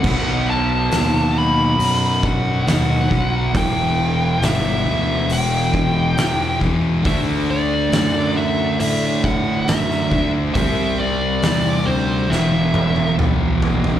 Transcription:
<<
  \new Staff \with { instrumentName = "Lead electric guitar" } { \time 4/4 \key e \minor \tempo 4 = 68 fis''8 a''4 b''4 fis''8 fis''4 | g''4 e''4 g''4. r8 | e''8 d''4 e''8 e''8 fis''8 e''8. r16 | e''8 d''4 c''8 e''4 r4 | }
  \new Staff \with { instrumentName = "Distorted electric guitar" } { \clef bass \time 4/4 \key e \minor <b, fis b>2.~ <b, fis b>8 <b, fis b>8 | <e, b, e>2.~ <e, b, e>8 <e, b, e>8 | <d a d'>2.~ <d a d'>8 <d a d'>8 | <c g c'>2 <e, b, e>2 | }
  \new Staff \with { instrumentName = "Distorted electric guitar" } { \clef bass \time 4/4 \key e \minor <b, fis b>1 | <e, b, e>1 | <d a d'>1 | <c g c'>2 <e, b, e>2 | }
  \new Staff \with { instrumentName = "Distorted electric guitar" } { \clef bass \time 4/4 \key e \minor <b, fis b>4. <b, fis b>2~ <b, fis b>8 | <e, b, e>4. <e, b, e>2~ <e, b, e>8 | <d a d'>4. <d a d'>2~ <d a d'>8 | <c g c'>4. <c g c'>8 <e, b, e>4. <e, b, e>8 | }
  \new Staff \with { instrumentName = "Fingered electric bass" } { \clef bass \time 4/4 \key e \minor b,,4 dis,4 fis,4 dis,8 b,,8 | e,,4 g,,8 d,8 e,,4 e,4 | d,4 fis,4 a,4 fis,8 d,8 | c,4 e,8 d,8 e,,4 b,,4 | }
  \new DrumStaff \with { instrumentName = "Drums" } \drummode { \time 4/4 <cymc bd>4 <hho sn>4 hho8 bd8 <hho sn>8 bd8 | <hho bd>4 <hho sn>4 hho8 bd8 <hho sn>8 bd8 | <hho bd>4 <hho sn>4 hho8 bd8 <hho sn>16 sn16 bd8 | <hho bd>4 <hho sn>4 sn8 tommh16 tommh16 toml8 tomfh16 tomfh16 | }
>>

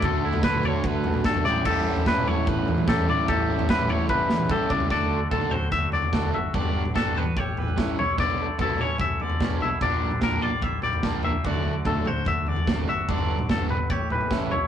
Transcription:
<<
  \new Staff \with { instrumentName = "Clean electric guitar" } { \time 4/4 \key d \major \tempo 4 = 147 a'4 b'8 cis''8 b'4 a'8 d''8 | a'4 b'8 cis''8 b'4 a'8 d''8 | a'4 b'8 cis''8 b'4 a'8 d''8 | d''4 a'8 c''8 e''8 d''4 e''8 |
d''4 a'8 b'8 cis''8 b'4 cis''8 | d''4 a'8 cis''8 e''8 d''4 e''8 | d''4 bes'8 d''8 e''8 d''4 e''8 | d''4 a'8 c''8 e''8 d''4 e''8 |
d''4 a'8 b'8 cis''8 b'4 cis''8 | }
  \new Staff \with { instrumentName = "Overdriven electric guitar" } { \time 4/4 \key d \major <d a d' fis'>8 <a d' fis'>8 <d a d' fis'>8 <a d' fis'>4. <d a d' fis'>8 <a, e g cis' e'>8 | <a, e g cis' e'>8 <g cis' e'>8 <a, e g cis' e'>8 <g cis' e'>4. <e g cis' e'>8 <g cis' e'>8 | <a, e g cis' e'>8 <g cis' e'>8 <a, e g cis' e'>8 <g cis' e'>4. <e g cis' e'>8 <g cis' e'>8 | <a d' fis' a'>8 r8 <a d' fis' a'>8 r4. <a c' fis' a'>8 r8 |
<g b d' g'>8 r8 <g b d' g'>8 r4. <e g cis' e'>8 r8 | <b, fis b d'>8 r8 <b, fis b d'>8 r4. <b, fis b d'>8 r8 | <bes, f bes d'>8 r8 <bes, f bes d'>8 r4. <bes, f bes d'>8 r8 | <d fis a d'>8 r8 <d fis a d'>8 r4. <d a c' fis'>8 r8 |
<d g b d'>8 r8 <d g b d'>8 r4. <e g cis' e'>8 r8 | }
  \new Staff \with { instrumentName = "Clean electric guitar" } { \clef bass \time 4/4 \key d \major << { fis8 e'2. <d b g'>8 | g'2. g'8 r8 | g'2. g'8 d'8 | fis'4 fis8 <d fis c' fis'>4 fis8 fis'8 fis'8~ |
fis'8 fis8 fis'8 b8 g'4 a8 e'8~ | e'8 a8 e'8 cis'8 a4 cis'8 e'8 | <d g bes d'>4 g8 f'8 bes8 g4 bes8 | fis'4 fis8 fis'2 fis'8~ |
fis'8 fis4. g'4 a8 e'8 | } \\ { <d, d>4. d4 fis,8 g,8 a,8~ | a,4 d4. e,4 a,8~ | a,4 d4. e,4 a,8 | d,8 d4 d,8 d4. g,8 |
d2 a,8 e4 b,8 | d2~ d8 d4 b,8 | bes,8 d2~ d8 r4 | d,8 d4 d,8 d8 e,8 fis,8 g,8 |
d4 fis,8 g,8 a,8 e4 b,8 | } >> }
  \new Staff \with { instrumentName = "Fingered electric bass" } { \clef bass \time 4/4 \key d \major d,2 d,8 bes,,4 a,,8~ | a,,4. r8 a,,8 e,4. | a,,2 a,,8 e,8 b,,8 cis,8 | d,4 d,16 r16 d,4. d,8 g,,8 |
g,,4 g,,8 e,8 a,,4 a,,8 b,,8~ | b,,4 b,,8 r8 b,,8 r8 b,,8 b,,8 | bes,,4 bes,,8 bes,,8 bes,,4 cis,4 | d,4 d,16 r16 d,4. a,,8 g,,8 |
g,,4 g,,8 gis,,8 a,,4 a,,8 b,,8 | }
  \new DrumStaff \with { instrumentName = "Drums" } \drummode { \time 4/4 <bd tomfh>8. tomfh16 <bd sn>16 toml16 tomfh8 bd8 tomfh16 toml16 <bd sn toml>16 tomfh16 toml8 | <cymc bd tomfh>8. tomfh16 <bd sn>16 toml16 tomfh8 bd8 tomfh16 toml16 <bd sn toml>16 tomfh16 toml8 | <bd tomfh>8. tomfh16 <bd sn>16 toml16 tomfh8 <bd tommh>8 sn16 toml16 bd8 bd16 tomfh16 | <bd tomfh>16 tomfh8. <bd tomfh toml>16 tomfh16 <tomfh toml>8 <bd tomfh>8 tomfh16 tomfh16 <bd sn>16 tomfh16 tomfh8 |
<bd tomfh>16 tomfh8 toml16 <bd sn tomfh toml>16 tomfh16 <tomfh toml>8 <bd tomfh>8 <tomfh toml>16 tomfh16 <bd sn>8 tomfh8 | <bd tomfh>16 tomfh8. <bd tomfh toml>16 tomfh16 <tomfh toml>8 <bd tomfh>8 tomfh16 tomfh16 <bd sn>16 tomfh16 tomfh8 | <bd tomfh>16 tomfh8 toml16 <bd sn tomfh toml>16 tomfh16 <tomfh toml>8 <bd tomfh>8 <tomfh toml>16 tomfh16 <bd sn>8 tomfh8 | <bd tomfh>16 tomfh8. <bd tomfh toml>16 tomfh16 <tomfh toml>8 <bd tomfh>8 tomfh16 tomfh16 <bd sn>16 tomfh16 tomfh8 |
<bd tomfh>16 tomfh8 toml16 <bd sn tomfh toml>16 tomfh16 <tomfh toml>8 <bd tomfh>8 <tomfh toml>16 tomfh16 <bd sn>8 tomfh8 | }
>>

